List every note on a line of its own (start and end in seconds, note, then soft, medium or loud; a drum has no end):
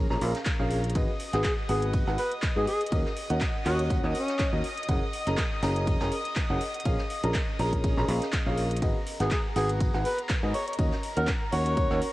0.00 0.96 A#4 medium
0.00 0.96 A#5 medium
0.10 0.19 A#1 medium
0.10 0.19 C#4 medium
0.10 0.19 G#4 medium
0.10 0.19 A#4 medium
0.10 0.19 A#5 loud
0.10 snare medium
0.21 0.32 A#1 loud
0.21 0.35 C#4 medium
0.21 0.35 G#4 medium
0.21 0.35 A#4 medium
0.21 0.35 F5 medium
0.21 open hi-hat loud
0.21 ride medium
0.35 snare medium
0.35 closed hi-hat soft
0.45 kick loud
0.45 snare loud
0.45 clap loud
0.45 closed hi-hat medium
0.45 ride medium
0.59 0.93 A#1 loud
0.59 0.78 C#4 medium
0.59 0.78 G#4 medium
0.59 0.78 A#4 medium
0.59 0.78 F5 loud
0.71 open hi-hat loud
0.71 ride medium
0.84 closed hi-hat soft
0.90 closed hi-hat medium
0.95 1.06 G#1 medium
0.95 1.09 B3 medium
0.95 1.09 F#4 medium
0.95 1.09 G#4 medium
0.95 8.83 D#5 medium
0.95 1.09 D#5 medium
0.95 8.83 D#6 loud
0.95 kick loud
0.95 closed hi-hat medium
0.95 ride medium
1.20 open hi-hat loud
1.20 ride medium
1.33 1.42 G#1 loud
1.33 1.44 B3 medium
1.33 1.44 F#4 medium
1.33 1.44 G#4 medium
1.33 1.41 G#4 medium
1.33 1.44 F#5 medium
1.33 snare medium
1.33 closed hi-hat soft
1.44 1.53 G#4 medium
1.44 kick loud
1.44 snare loud
1.44 clap loud
1.44 closed hi-hat medium
1.44 ride medium
1.69 2.04 G#1 medium
1.69 2.04 B3 medium
1.69 2.04 F#4 medium
1.69 2.04 G#4 medium
1.69 1.84 G#4 medium
1.69 2.04 F#5 loud
1.69 open hi-hat loud
1.69 ride medium
1.82 closed hi-hat medium
1.82 ride soft
1.94 kick loud
1.94 closed hi-hat medium
1.94 ride medium
1.94 ride loud
2.07 2.16 G#1 medium
2.07 2.18 B3 medium
2.07 2.18 F#4 medium
2.07 2.18 G#4 medium
2.07 2.18 F#5 loud
2.07 snare soft
2.18 2.33 B4 loud
2.18 snare soft
2.18 open hi-hat loud
2.18 ride medium
2.32 closed hi-hat medium
2.42 kick loud
2.42 snare loud
2.42 clap loud
2.42 closed hi-hat medium
2.42 ride medium
2.56 2.65 G#2 loud
2.56 2.67 B3 medium
2.56 2.67 F#4 medium
2.56 2.67 G#4 medium
2.56 2.65 G#4 medium
2.56 2.67 D#5 medium
2.67 2.82 G#4 loud
2.67 open hi-hat medium
2.67 ride medium
2.81 closed hi-hat soft
2.86 closed hi-hat medium
2.92 3.03 D#2 loud
2.92 3.05 C#4 medium
2.92 3.05 F#4 medium
2.92 3.05 A#4 medium
2.92 3.05 D#5 loud
2.92 kick loud
2.92 closed hi-hat medium
2.92 ride medium
3.06 snare medium
3.17 open hi-hat loud
3.17 ride medium
3.30 3.39 D#2 loud
3.30 3.41 C#4 medium
3.30 3.41 F#4 medium
3.30 3.41 A#4 medium
3.30 3.41 F#5 medium
3.30 closed hi-hat medium
3.41 kick loud
3.41 snare loud
3.41 clap loud
3.41 closed hi-hat medium
3.41 ride medium
3.65 4.01 D#2 loud
3.65 4.01 C#4 medium
3.65 3.80 F#4 medium
3.65 4.01 F#4 medium
3.65 4.01 A#4 medium
3.65 4.01 F#5 loud
3.65 clap medium
3.65 open hi-hat medium
3.79 closed hi-hat medium
3.90 kick loud
3.90 closed hi-hat medium
3.90 ride medium
4.03 4.13 D#2 loud
4.03 4.15 C#4 medium
4.03 4.15 F#4 medium
4.03 4.15 A#4 medium
4.03 4.15 F#5 loud
4.03 snare medium
4.15 4.53 C#4 medium
4.15 open hi-hat loud
4.15 ride medium
4.28 snare soft
4.28 closed hi-hat medium
4.39 kick loud
4.39 snare loud
4.39 clap loud
4.39 closed hi-hat medium
4.39 ride medium
4.53 4.61 D#2 loud
4.53 4.63 C#4 medium
4.53 4.63 F#4 medium
4.53 4.63 A#4 medium
4.53 4.63 D#5 medium
4.64 open hi-hat medium
4.64 ride medium
4.78 closed hi-hat soft
4.83 closed hi-hat medium
4.89 4.99 F#1 loud
4.89 5.02 C#4 medium
4.89 5.02 G#4 medium
4.89 5.02 A#4 medium
4.89 5.02 F#5 medium
4.89 kick loud
4.89 closed hi-hat medium
4.89 ride medium
5.13 open hi-hat loud
5.13 ride medium
5.27 5.36 F#1 loud
5.27 5.38 C#4 medium
5.27 5.38 G#4 medium
5.27 5.38 A#4 medium
5.27 5.38 A#5 medium
5.27 snare medium
5.27 closed hi-hat medium
5.37 kick loud
5.37 snare loud
5.37 clap loud
5.37 closed hi-hat medium
5.37 ride medium
5.62 5.98 F#1 loud
5.62 5.97 C#4 medium
5.62 5.97 G#4 medium
5.62 5.97 A#4 medium
5.62 5.97 A#5 loud
5.62 snare loud
5.62 open hi-hat medium
5.62 ride medium
5.76 closed hi-hat medium
5.87 kick loud
5.87 closed hi-hat medium
5.87 open hi-hat medium
5.87 ride medium
6.00 6.09 F#1 medium
6.00 6.12 C#4 medium
6.00 6.12 G#4 medium
6.00 6.12 A#4 medium
6.00 6.12 A#5 loud
6.00 snare loud
6.00 ride medium
6.12 open hi-hat loud
6.25 closed hi-hat medium
6.25 open hi-hat medium
6.36 kick loud
6.36 snare loud
6.36 clap loud
6.36 closed hi-hat medium
6.36 ride medium
6.50 6.57 F#1 loud
6.50 6.60 C#4 medium
6.50 6.60 G#4 medium
6.50 6.60 A#4 medium
6.50 6.60 F#5 medium
6.60 open hi-hat medium
6.60 ride medium
6.74 closed hi-hat soft
6.80 closed hi-hat medium
6.85 6.96 A#1 loud
6.85 6.99 C#4 medium
6.85 6.99 G#4 medium
6.85 6.99 A#4 medium
6.85 6.99 F5 medium
6.85 kick loud
6.85 closed hi-hat medium
6.85 ride medium
6.98 snare soft
7.10 open hi-hat loud
7.10 ride medium
7.23 7.32 A#1 loud
7.23 7.34 C#4 medium
7.23 7.34 G#4 medium
7.23 7.34 A#4 medium
7.23 7.35 A#5 medium
7.23 closed hi-hat medium
7.34 kick loud
7.34 snare loud
7.34 clap loud
7.34 closed hi-hat medium
7.34 ride medium
7.59 7.95 A#1 medium
7.59 7.94 C#4 medium
7.59 7.94 G#4 medium
7.59 7.94 A#4 medium
7.59 7.94 A#5 loud
7.59 open hi-hat medium
7.73 kick medium
7.73 closed hi-hat medium
7.84 kick loud
7.84 closed hi-hat medium
7.84 ride medium
7.97 8.06 A#1 loud
7.97 8.06 C#4 medium
7.97 8.06 G#4 medium
7.97 8.06 A#4 medium
7.97 8.06 A#5 loud
7.97 snare soft
8.08 8.19 A#1 loud
8.08 8.22 C#4 medium
8.08 8.22 G#4 medium
8.08 8.22 A#4 medium
8.08 8.22 F5 medium
8.08 open hi-hat loud
8.08 ride medium
8.22 snare medium
8.22 closed hi-hat medium
8.32 kick loud
8.32 snare loud
8.32 clap loud
8.32 closed hi-hat medium
8.32 ride medium
8.46 8.80 A#1 loud
8.46 8.65 C#4 medium
8.46 8.65 G#4 medium
8.46 8.65 A#4 medium
8.46 8.65 F5 loud
8.57 open hi-hat medium
8.57 ride medium
8.71 closed hi-hat soft
8.76 closed hi-hat medium
8.82 8.93 G#1 loud
8.82 8.95 B3 medium
8.82 8.95 F#4 medium
8.82 8.95 G#4 medium
8.82 12.13 A#4 medium
8.82 8.95 D#5 medium
8.82 12.13 A#5 medium
8.82 kick loud
8.82 closed hi-hat medium
8.82 ride medium
9.07 open hi-hat loud
9.07 ride medium
9.20 9.29 G#1 loud
9.20 9.31 B3 medium
9.20 9.31 F#4 medium
9.20 9.31 G#4 medium
9.20 9.27 G#4 medium
9.20 9.31 F#5 loud
9.20 snare medium
9.20 closed hi-hat medium
9.31 9.40 G#4 medium
9.31 kick loud
9.31 snare loud
9.31 clap loud
9.31 closed hi-hat medium
9.31 ride medium
9.56 9.91 G#1 loud
9.56 9.91 B3 medium
9.56 9.91 F#4 medium
9.56 9.91 G#4 medium
9.56 9.70 G#4 loud
9.56 9.91 F#5 loud
9.56 snare medium
9.56 open hi-hat loud
9.56 ride medium
9.69 closed hi-hat medium
9.69 ride soft
9.80 kick loud
9.80 closed hi-hat medium
9.80 ride medium
9.80 ride loud
9.93 10.03 G#1 loud
9.93 10.05 B3 medium
9.93 10.05 F#4 medium
9.93 10.05 G#4 medium
9.93 10.05 F#5 loud
9.93 snare soft
10.05 10.19 B4 medium
10.05 snare soft
10.05 open hi-hat loud
10.05 ride medium
10.18 closed hi-hat medium
10.29 kick loud
10.29 snare loud
10.29 clap loud
10.29 closed hi-hat medium
10.29 ride medium
10.43 10.52 G#2 medium
10.43 10.54 B3 medium
10.43 10.54 F#4 medium
10.43 10.54 G#4 medium
10.43 10.54 D#5 medium
10.54 10.63 C#5 medium
10.54 open hi-hat medium
10.54 ride medium
10.68 10.75 C#5 medium
10.68 closed hi-hat medium
10.73 closed hi-hat medium
10.79 10.89 D#2 medium
10.79 10.92 C#4 medium
10.79 10.92 F#4 medium
10.79 10.92 A#4 medium
10.79 10.92 D#5 medium
10.79 kick loud
10.79 closed hi-hat medium
10.79 ride medium
10.92 snare medium
11.03 open hi-hat loud
11.03 ride medium
11.17 11.26 D#2 loud
11.17 11.28 C#4 medium
11.17 11.28 F#4 medium
11.17 11.29 A#4 medium
11.17 11.28 A#4 medium
11.17 11.28 F#5 medium
11.17 closed hi-hat medium
11.27 kick loud
11.27 snare loud
11.27 clap loud
11.27 closed hi-hat medium
11.27 ride medium
11.53 11.88 D#2 loud
11.53 11.87 C#4 medium
11.53 11.87 F#4 medium
11.53 11.87 A#4 medium
11.53 12.02 C#5 loud
11.53 11.87 F#5 loud
11.53 open hi-hat loud
11.53 open hi-hat medium
11.66 closed hi-hat medium
11.77 kick loud
11.77 closed hi-hat medium
11.77 ride medium
11.90 11.99 D#2 loud
11.90 12.02 C#4 loud
11.90 12.02 F#4 medium
11.90 12.02 A#4 medium
11.90 12.02 F#5 loud
11.90 snare soft
12.02 open hi-hat loud
12.02 ride medium